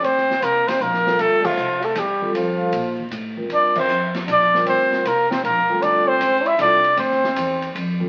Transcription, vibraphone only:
X:1
M:3/4
L:1/8
Q:"Swing" 1/4=156
K:Dm
V:1 name="Vibraphone"
z4 z [G,CFA]- | [G,CFA]2 z3 [G,CFA]- | [G,CFA]2 z3 [G,CFB]- | [G,CFB]2 z3 [G,CFB]- |
[G,CFB]2 z3 [G,CFA]- | [G,CFA]2 z2 [G,CFA] z | z4 z [G,CFA] |]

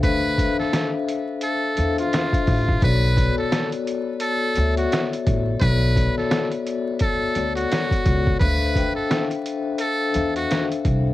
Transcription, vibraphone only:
X:1
M:4/4
L:1/16
Q:"Swing 16ths" 1/4=86
K:Dlyd
V:1 name="Vibraphone"
[DA=ce=f]2 [DAcef]4- [DAcef] z3 [DAcef]4 z2 | [B,FAcd]2 [B,FAcd]4- [B,FAcd] z3 [B,FAce]4 z2 | [B,FAcd]2 [B,FAcd]4- [B,FAcd] z3 [B,FAcd]4 z2 | [DA=ce=f]2 [DAce=g]4- [DAceg] z3 [DAcef]4 z2 |]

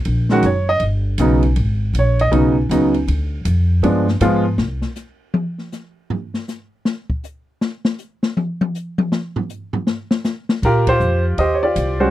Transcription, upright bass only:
X:1
M:4/4
L:1/8
Q:"Swing" 1/4=159
K:Ablyd
V:1 name="Upright bass" clef=bass
B,,,2 _G,,,2 =G,,,2 =B,,,2 | A,,,2 B,,,2 _C,,2 _D,,2 | D,,2 F,,2 G,,2 A,,2 | C,, z6 z |
z8 | z8 | z8 | B,,2 F,,2 E,,2 C,,2 |]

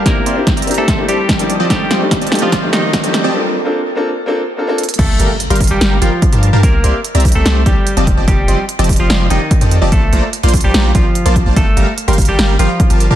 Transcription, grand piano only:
X:1
M:4/4
L:1/16
Q:1/4=146
K:Gm
V:1 name="Grand piano"
[B,CD=EG]2 z [B,CDEG] z2 [B,CDEG] z2 [B,CDEG] z3 [B,CDEG] z2 | [A,CDEG]2 z [A,CDEG] z2 [A,CDEG] z2 [A,CDEG] z3 [A,CDEG] z2 | [B,CDFA]2 z [B,CDFA] z2 [B,CDFA] z2 [B,CDFA] z2 [B,CDFA] [B,CDFA] z2 | z16 |
z16 | z16 | z16 | z16 |]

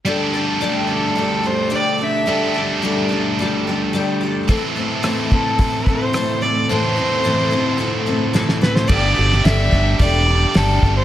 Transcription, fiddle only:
X:1
M:4/4
L:1/16
Q:1/4=108
K:Ador
V:1 name="Fiddle"
z6 A4 c2 d3/2 d/2 e2- | e2 z12 z2 | z6 A4 c4 d2 | c12 z2 B c |
d4 e4 d4 A3 c |]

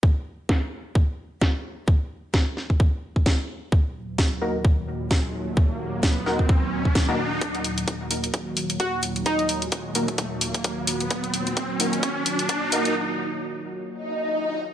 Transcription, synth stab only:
X:1
M:4/4
L:1/16
Q:"Swing 16ths" 1/4=130
K:Ebm
V:1 name="Synth stab"
z16 | z16 | z6 [B,EGB] z8 z | z6 [B,EGB] z6 [B,EGB] z2 |
z6 [B,EGB] z8 z | z6 [B,EGB] z8 z | z6 [B,EGB] z6 z [B,EGB] z | z16 |]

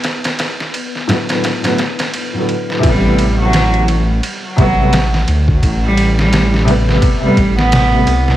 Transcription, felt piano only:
X:1
M:4/4
L:1/16
Q:"Swing 16ths" 1/4=86
K:Ador
V:1 name="Felt piano" clef=bass
z6 [A,,D,F,A,B,]3 [A,,D,F,A,B,] z3 [A,,D,F,A,B,]3 | [C,E,A,B,]6 z4 [C,G,A,B,] [C,G,A,B,] z4 | z6 [C,G,A,B,]3 [C,G,A,B,] z3 [C,G,A,B,]3 |]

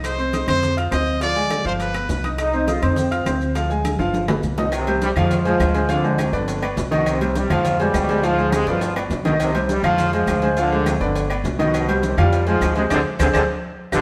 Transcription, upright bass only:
X:1
M:4/4
L:1/8
Q:1/4=205
K:Cm
V:1 name="Upright bass" clef=bass
C,,3 F,,3 D,,2- | D,,3 G,,,3 C,,2- | C,,3 F,,3 D,,2- | D,,3 G,,,3 C,,2- |
C,,3 F,,3 D,,2- | D,,3 G,,,3 C,,2- | C,,3 F,,3 D,,2- | D,,3 G,,,3 C,,2- |
C,,3 F,,3 D,,2- | D,,3 G,,,3 C,,2- | C,,3 F,,3 D,,2 | D,, z D,, D,, z3 G,,, |]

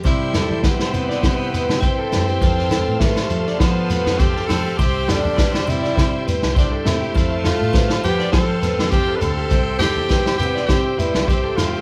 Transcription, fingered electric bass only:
X:1
M:4/4
L:1/16
Q:"Swing 16ths" 1/4=102
K:C
V:1 name="Fingered electric bass" clef=bass
C,3 E,3 C,2 C,3 C,3 ^F,,2 | F,,3 A,,3 F,2 F,3 F,,3 F,2 | C,,3 E,,3 C,2 C,3 C,,3 C,2 | F,,3 A,,3 F,2 F,3 F,,3 D,,2 |
C,,3 E,,3 C,2 C,3 C,,3 E,,2 |]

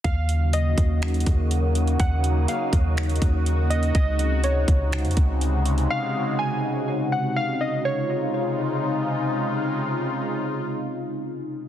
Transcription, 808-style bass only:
X:1
M:4/4
L:1/16
Q:1/4=123
K:Db
V:1 name="808-style bass" clef=bass
E,,6 E,,4 E,,6 | E,,4 z2 E,,4 E,,6 | D,,6 D,,3 F,, D,,6 | z16 |
z16 | z16 |]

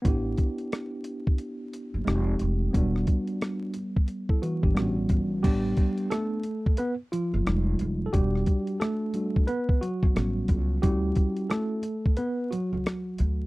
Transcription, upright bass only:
X:1
M:4/4
L:1/16
Q:"Swing 16ths" 1/4=89
K:Amix
V:1 name="Upright bass" clef=bass
A,,,2 z8 z F,,, =F,,,2 F,,,2 | E,,,2 z8 z G,,, A,,,2 G,,,2 | A,,,2 z8 z F,,, =F,,,2 F,,,2 | E,,,2 z8 z G,,, A,,,2 C,,2 |
D,,2 z8 z C,, z2 D,,2 |]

